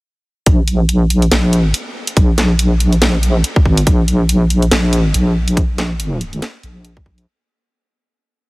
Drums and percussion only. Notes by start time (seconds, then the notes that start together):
0.46 kick, closed hi-hat
0.68 closed hi-hat
0.89 closed hi-hat
1.10 closed hi-hat
1.22 closed hi-hat
1.32 snare, closed hi-hat
1.53 closed hi-hat
1.74 closed hi-hat
2.07 closed hi-hat
2.17 kick, closed hi-hat
2.38 snare, closed hi-hat
2.59 closed hi-hat
2.80 closed hi-hat
2.92 closed hi-hat
3.02 snare, closed hi-hat
3.23 closed hi-hat
3.44 closed hi-hat
3.56 kick
3.65 kick
3.77 closed hi-hat
3.87 kick, closed hi-hat
4.08 closed hi-hat
4.29 closed hi-hat
4.50 closed hi-hat
4.62 closed hi-hat
4.71 snare, closed hi-hat
4.93 closed hi-hat
5.14 closed hi-hat
5.48 closed hi-hat
5.57 kick, closed hi-hat
5.78 snare, closed hi-hat
6.00 closed hi-hat
6.21 closed hi-hat
6.33 closed hi-hat
6.42 snare, closed hi-hat
6.63 closed hi-hat
6.85 closed hi-hat
6.97 kick
7.06 kick
7.18 closed hi-hat